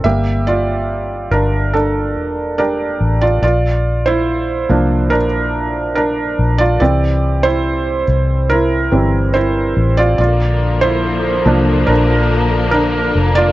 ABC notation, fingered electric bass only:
X:1
M:4/4
L:1/8
Q:1/4=71
K:Bblyd
V:1 name="Fingered electric bass" clef=bass
G,,,3 G,,,2 E,,,2 A,,, | B,,,3 C,, B,,,3 B,,, | C,,3 C,,2 G,,,2 A,,, | B,,,3 C,, B,,,3 F,,, |]